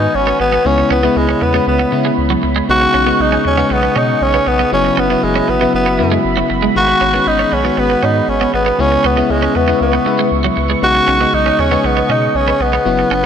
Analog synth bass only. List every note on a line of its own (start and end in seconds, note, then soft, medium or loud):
0.15 0.33 G#1 medium
0.40 0.58 G#1 medium
0.65 0.84 C#2 loud
0.91 1.09 C#2 medium
1.16 1.35 C#2 loud
1.42 1.60 E2 medium
1.67 1.85 C#2 loud
1.93 2.11 C#3 medium
2.18 2.36 C#2 loud
2.44 2.62 C#2 medium
2.69 2.87 B1 loud
2.94 3.13 B1 medium
3.20 3.38 B1 medium
3.45 3.63 D#2 medium
3.71 3.89 B1 medium
3.96 4.14 B2 medium
4.21 4.40 B1 loud
4.47 4.65 B1 loud
4.72 4.91 F#1 loud
4.98 5.16 F#1 medium
5.23 5.42 F#1 loud
5.49 5.67 G#1 medium
5.74 6.01 F#1 loud
6.00 6.18 F#2 medium
6.25 6.43 F#1 loud
6.50 6.69 F#1 medium
6.76 6.94 G#1 loud
7.01 7.19 G#1 loud
7.27 7.45 G#1 loud
7.52 7.70 B1 medium
7.78 7.96 G#1 loud
8.03 8.21 G#2 medium
8.28 8.47 G#1 medium
8.54 8.72 G#1 loud
8.79 8.97 C#2 loud
9.05 9.23 C#2 loud
9.30 9.48 C#2 medium
9.55 9.74 E2 medium
9.81 9.99 C#2 loud
10.06 10.24 C#3 medium
10.32 10.50 C#2 loud
10.57 10.75 C#2 medium
10.83 11.01 B1 medium
11.08 11.26 B1 medium
11.33 11.52 B1 medium
11.59 11.77 D#2 medium
11.84 12.02 B1 loud
12.09 12.28 B2 medium
12.35 12.53 B1 medium
12.60 12.79 B1 loud
12.86 13.04 F#1 loud
13.11 13.26 F#1 medium